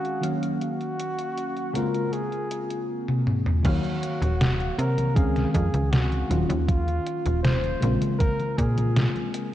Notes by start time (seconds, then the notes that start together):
Already playing: D#3 G#3 C4 C#4 F#4 F5
0.05 closed hi-hat
0.21 D#3 F#3 A#3 C#4 F5, closed hi-hat
0.43 closed hi-hat
0.61 F#4, closed hi-hat
0.81 closed hi-hat
0.99 closed hi-hat
1.19 closed hi-hat
1.37 closed hi-hat
1.56 closed hi-hat
1.73 C#3 G#3 A#3 C4 F4 A#4, closed hi-hat
1.94 closed hi-hat
2.12 G#4, closed hi-hat
2.32 closed hi-hat
2.51 closed hi-hat
2.70 closed hi-hat
3.08 high tom
3.27 mid tom
3.46 mid tom
3.63 D#2 D#3 F#3 A#3 F#4 C#5 F5, kick, closed hi-hat, crash, high conga
3.84 closed hi-hat, high conga
4.03 closed hi-hat
4.22 D#1, closed hi-hat, high conga
4.41 snare, closed hi-hat, high conga
4.60 closed hi-hat, high conga
4.78 C3 A#4, closed hi-hat
4.98 closed hi-hat, high conga
5.15 C#2 D#3 G#3 C4 C#4 G#4 F5, kick, closed hi-hat, high conga
5.36 snare, closed hi-hat, high conga
5.54 F2 G#4, kick, closed hi-hat
5.74 C#2, closed hi-hat, high conga
5.92 F#4, snare, closed hi-hat, high conga
6.12 closed hi-hat, high conga
6.29 D#1 D#3 F#3 A#3 C#4 F4, closed hi-hat
6.49 D#2, closed hi-hat, high conga
6.68 F4, kick, closed hi-hat, high conga
6.88 closed hi-hat, high conga
7.06 closed hi-hat
7.26 D#1, closed hi-hat, high conga
7.43 C5, snare, closed hi-hat, high conga
7.64 closed hi-hat, high conga
7.80 A#1 C#3 G#3 A#3 C4 F4, closed hi-hat
8.02 closed hi-hat, high conga
8.19 A#4, kick, closed hi-hat, high conga
8.39 closed hi-hat, high conga
8.58 A#2 G#4, kick, closed hi-hat
8.78 closed hi-hat, high conga
8.96 snare, closed hi-hat, high conga
9.16 closed hi-hat, high conga
9.34 closed hi-hat